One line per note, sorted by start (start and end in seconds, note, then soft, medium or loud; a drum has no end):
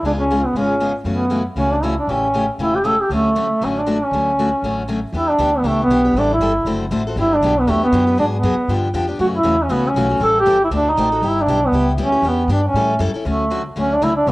0.03 0.44 C#2 medium
0.03 0.23 C#3 medium
0.03 0.23 G#3 soft
0.03 0.23 B3 medium
0.03 0.12 D4 medium
0.03 0.23 F4 medium
0.03 0.23 G#4 medium
0.20 0.47 C#4 medium
0.31 0.40 C#3 medium
0.31 0.41 G#3 medium
0.31 0.41 B3 medium
0.31 0.41 F4 medium
0.31 0.41 G#4 medium
0.45 0.56 B3 medium
0.53 0.95 G#1 medium
0.53 0.74 C#3 medium
0.53 0.74 G#3 medium
0.53 0.74 B3 medium
0.53 0.74 F4 medium
0.57 0.94 C#4 medium
0.57 0.74 G#4 medium
0.80 0.91 C#3 medium
0.80 0.91 G#3 medium
0.80 0.91 B3 medium
0.80 0.91 F4 medium
0.80 0.91 G#4 medium
1.04 1.46 F#2 medium
1.04 1.24 C#3 soft
1.04 1.24 E3 soft
1.04 1.24 A3 medium
1.04 1.44 B3 medium
1.04 1.24 C#4 medium
1.04 1.25 F#4 medium
1.30 1.41 C#3 medium
1.30 1.41 E3 medium
1.30 1.42 A3 medium
1.30 1.42 C#4 medium
1.30 1.42 F#4 medium
1.56 1.97 C#2 medium
1.56 1.75 C#3 medium
1.56 1.75 E3 medium
1.56 1.75 A3 medium
1.56 1.74 C#4 medium
1.56 1.76 C#4 medium
1.56 1.76 F#4 medium
1.72 1.85 D4 medium
1.83 1.93 C#3 medium
1.83 1.93 E3 medium
1.83 1.93 A3 medium
1.83 1.94 C#4 medium
1.83 1.98 E4 medium
1.83 1.94 F#4 medium
2.00 2.11 D4 medium
2.07 2.48 A1 medium
2.07 2.27 C#3 medium
2.07 2.27 E3 medium
2.07 2.27 A3 medium
2.07 2.49 C#4 medium
2.07 2.27 C#4 medium
2.07 2.27 G4 medium
2.34 2.44 C#3 medium
2.34 2.44 E3 medium
2.34 2.44 A3 medium
2.34 2.45 C#4 medium
2.34 2.45 G4 medium
2.58 2.99 E1 medium
2.58 2.77 C#3 medium
2.58 2.78 E3 medium
2.58 2.78 A3 medium
2.58 2.78 C#4 medium
2.58 2.77 E4 medium
2.58 2.78 G4 medium
2.76 2.88 G4 medium
2.84 2.94 C#3 medium
2.84 2.95 E3 medium
2.84 2.95 A3 medium
2.84 2.95 C#4 medium
2.84 2.95 G4 medium
2.84 3.03 A4 medium
3.02 3.11 G4 medium
3.09 3.50 D2 medium
3.09 3.28 D3 medium
3.09 3.29 F#3 medium
3.09 3.29 A3 medium
3.09 3.66 A3 medium
3.09 3.29 C#4 medium
3.09 3.29 F#4 medium
3.35 3.46 D3 medium
3.35 3.46 F#3 medium
3.35 3.46 A3 medium
3.35 3.46 C#4 medium
3.35 3.46 F#4 medium
3.61 4.01 A1 medium
3.61 3.79 D3 medium
3.61 3.79 F#3 medium
3.61 3.80 A3 medium
3.61 3.80 C#4 medium
3.61 3.80 F#4 medium
3.78 4.06 D4 medium
3.86 3.97 D3 medium
3.86 3.97 F#3 medium
3.86 3.97 A3 medium
3.86 3.97 C#4 medium
3.86 3.97 F#4 medium
4.04 4.90 C#4 medium
4.11 4.52 D2 medium
4.11 4.31 D3 medium
4.11 4.31 F#3 medium
4.11 4.31 A3 medium
4.11 4.31 C#4 medium
4.11 4.31 F#4 medium
4.39 4.48 D3 medium
4.39 4.49 F#3 medium
4.39 4.48 A3 medium
4.39 4.49 C#4 medium
4.39 4.49 F#4 medium
4.62 5.03 A1 medium
4.62 4.81 D3 medium
4.62 4.82 F#3 medium
4.62 4.82 A3 medium
4.62 4.82 C#4 medium
4.62 4.82 F#4 medium
4.88 4.98 D3 medium
4.88 4.99 F#3 medium
4.88 4.99 A3 medium
4.88 4.99 C#4 medium
4.88 4.99 F#4 medium
5.12 5.38 E2 medium
5.12 5.32 E3 medium
5.12 5.32 B3 medium
5.12 5.32 D4 medium
5.12 5.31 E4 medium
5.12 5.32 G4 medium
5.30 5.59 D4 medium
5.38 5.62 D2 medium
5.38 5.49 E3 medium
5.38 5.49 B3 medium
5.38 5.49 D4 medium
5.38 5.50 G4 medium
5.58 5.70 B3 medium
5.62 5.87 C#2 medium
5.62 5.82 E3 medium
5.62 5.82 B3 medium
5.62 5.83 D4 medium
5.62 5.83 G4 medium
5.68 5.81 A3 medium
5.84 6.21 B3 medium
5.88 6.13 B1 medium
5.88 6.00 E3 medium
5.88 6.01 B3 medium
5.88 6.01 D4 medium
5.88 6.01 G4 medium
6.05 6.16 B3 soft
6.05 6.15 D4 medium
6.05 6.15 G4 medium
6.13 6.38 A1 medium
6.13 6.34 E3 medium
6.13 6.34 G3 medium
6.13 6.34 C4 medium
6.13 6.34 E4 medium
6.18 6.32 D4 medium
6.18 6.35 A4 medium
6.33 6.79 E4 medium
6.38 6.64 G1 medium
6.38 6.51 E3 medium
6.38 6.51 G3 medium
6.38 6.51 C4 medium
6.38 6.51 E4 medium
6.42 6.52 A4 medium
6.65 6.90 F#1 medium
6.65 6.84 D3 medium
6.65 6.84 A3 medium
6.65 6.84 C4 medium
6.65 6.85 F#4 medium
6.65 6.85 A4 medium
6.91 7.15 A1 medium
6.91 7.01 D3 medium
6.91 7.02 A3 medium
6.91 7.02 C4 medium
6.91 7.02 F#4 medium
6.91 7.02 A4 medium
7.07 7.17 C4 soft
7.07 7.17 F#4 soft
7.07 7.17 A4 medium
7.16 7.40 G1 medium
7.16 7.35 D3 medium
7.16 7.35 F#3 medium
7.16 7.35 B3 medium
7.16 7.36 D4 medium
7.16 7.37 E4 loud
7.16 7.35 G4 medium
7.35 7.61 D4 medium
7.41 7.66 B1 medium
7.41 7.52 D3 medium
7.41 7.53 F#3 medium
7.41 7.53 B3 medium
7.41 7.53 D4 medium
7.41 7.53 G4 medium
7.60 7.72 B3 medium
7.67 7.91 E2 medium
7.67 7.85 D3 medium
7.67 7.85 F#3 medium
7.67 7.83 A3 medium
7.67 7.86 B3 medium
7.67 7.86 D4 medium
7.67 7.86 G4 medium
7.84 8.16 B3 loud
7.92 8.17 F#2 medium
7.92 8.03 D3 medium
7.92 8.03 F#3 medium
7.92 8.03 B3 medium
7.92 8.03 D4 medium
7.92 8.04 G4 loud
8.07 8.17 B3 soft
8.07 8.18 D4 soft
8.07 8.17 G4 medium
8.18 8.42 G#2 medium
8.18 8.36 D3 medium
8.18 8.36 F#3 medium
8.18 8.36 B3 medium
8.18 8.26 D4 medium
8.18 8.36 F#4 medium
8.18 8.37 G#4 medium
8.33 8.80 B3 medium
8.43 8.56 F#2 medium
8.43 8.54 D3 medium
8.43 8.54 F#3 medium
8.43 8.54 B3 medium
8.43 8.54 F#4 medium
8.43 8.54 G#4 medium
8.56 muted upright bass stroke soft
8.68 8.93 G2 medium
8.68 8.87 D3 medium
8.68 8.87 F3 medium
8.68 8.88 B3 medium
8.68 8.88 D4 medium
8.68 8.88 G4 medium
8.93 9.18 F2 medium
8.93 9.04 D3 medium
8.93 9.04 F3 medium
8.93 9.05 B3 medium
8.93 9.05 D4 medium
8.93 9.05 G4 medium
9.07 9.19 B3 soft
9.07 9.19 D4 medium
9.07 9.18 G4 medium
9.19 9.43 F#2 medium
9.19 9.38 C#3 medium
9.19 9.37 E3 medium
9.19 9.38 A3 medium
9.19 9.38 C#4 medium
9.19 9.27 F#4 medium
9.19 9.38 F#4 medium
9.37 9.64 E4 medium
9.43 9.68 E2 medium
9.43 9.54 C#3 medium
9.43 9.55 E3 medium
9.43 9.55 A3 medium
9.43 9.55 C#4 medium
9.43 9.55 F#4 medium
9.63 9.73 C#4 medium
9.69 9.94 C#2 medium
9.69 9.88 C#3 medium
9.69 9.88 E3 medium
9.69 9.88 A3 medium
9.69 9.89 B3 medium
9.69 9.88 C#4 medium
9.69 9.89 F#4 medium
9.88 10.22 C#4 medium
9.94 10.19 B1 medium
9.94 10.06 C#3 medium
9.94 10.06 E3 medium
9.94 10.07 A3 medium
9.94 10.07 C#4 medium
9.94 10.07 F#4 loud
10.09 10.20 A3 soft
10.09 10.20 C#4 medium
10.09 10.20 F#4 medium
10.19 10.44 A1 medium
10.19 10.39 E3 medium
10.19 10.39 G3 medium
10.19 10.39 C4 medium
10.19 10.39 E4 medium
10.19 10.39 A4 medium
10.23 10.36 A4 loud
10.40 10.62 G4 loud
10.45 10.70 G1 medium
10.45 10.56 E3 medium
10.45 10.57 G3 medium
10.45 10.57 C4 medium
10.45 10.57 E4 medium
10.45 10.57 A4 medium
10.64 10.68 E4 medium
10.70 10.96 D2 medium
10.70 10.90 D3 medium
10.70 10.90 A3 medium
10.70 10.90 C4 medium
10.70 10.90 F#4 medium
10.70 10.90 A4 medium
10.76 10.91 D4 medium
10.90 11.30 D#4 loud
10.96 11.21 A1 medium
10.96 11.07 D3 medium
10.96 11.08 A3 medium
10.96 11.08 C4 medium
10.96 11.08 F#4 medium
10.96 11.08 A4 medium
11.12 11.22 C4 medium
11.12 11.23 F#4 medium
11.12 11.22 A4 medium
11.21 11.46 G1 medium
11.21 11.41 G3 medium
11.21 11.41 B3 medium
11.21 11.41 E4 medium
11.21 11.41 G4 medium
11.28 11.43 E4 medium
11.42 11.68 D4 medium
11.46 11.71 B1 medium
11.46 11.58 G3 medium
11.46 11.58 B3 medium
11.46 11.59 E4 medium
11.46 11.59 G4 medium
11.67 11.90 B3 medium
11.72 11.97 C#2 medium
11.72 11.91 G3 medium
11.72 11.92 B3 medium
11.72 11.92 E4 medium
11.72 11.92 G4 medium
11.97 12.21 D2 medium
11.97 12.08 G3 medium
11.97 12.09 B3 medium
11.97 12.09 E4 medium
11.97 12.09 G4 medium
12.03 12.24 C#4 medium
12.12 12.23 B3 soft
12.12 12.24 E4 medium
12.12 12.23 G4 medium
12.22 12.47 E2 medium
12.22 12.42 E3 medium
12.22 12.42 B3 medium
12.22 12.42 D4 medium
12.22 12.43 G4 medium
12.28 12.49 B3 medium
12.47 12.73 G2 medium
12.47 12.59 E3 medium
12.47 12.60 B3 medium
12.47 12.60 D4 medium
12.47 12.60 G4 medium
12.52 12.64 D4 medium
12.68 12.99 C#4 medium
12.73 12.98 A2 medium
12.73 12.93 E3 medium
12.73 12.93 G3 medium
12.73 12.93 C#4 medium
12.73 12.94 E4 medium
12.73 12.94 A4 medium
12.99 13.13 F#2 medium
12.99 13.10 E3 medium
12.99 13.10 G3 medium
12.99 13.10 C#4 medium
12.99 13.10 E4 medium
12.99 13.10 A4 medium
13.14 13.25 C#4 soft
13.14 13.25 E4 medium
13.14 13.24 A4 medium
13.25 13.65 D2 medium
13.25 13.43 D3 medium
13.25 13.44 F#3 medium
13.25 13.44 A3 medium
13.25 13.63 A3 medium
13.25 13.44 C#4 medium
13.25 13.44 F#4 medium
13.50 13.61 D3 medium
13.50 13.61 F#3 medium
13.50 13.61 A3 medium
13.50 13.61 C#4 medium
13.50 13.61 F#4 medium
13.76 13.97 D2 medium
13.76 13.94 D3 medium
13.76 13.94 F#3 medium
13.76 13.94 A3 medium
13.76 13.94 C#4 medium
13.76 13.95 C#4 medium
13.76 13.95 F#4 medium
13.94 14.05 D4 medium
14.01 14.23 C#2 medium
14.01 14.12 D3 medium
14.01 14.12 F#3 medium
14.01 14.12 A3 medium
14.01 14.12 C#4 medium
14.01 14.16 E4 loud
14.01 14.12 F#4 medium
14.16 14.30 D4 medium
14.26 14.32 C2 medium
14.26 14.32 C3 medium
14.26 14.32 G3 medium
14.26 14.32 A#3 medium
14.26 14.32 D#4 medium
14.26 14.32 G4 medium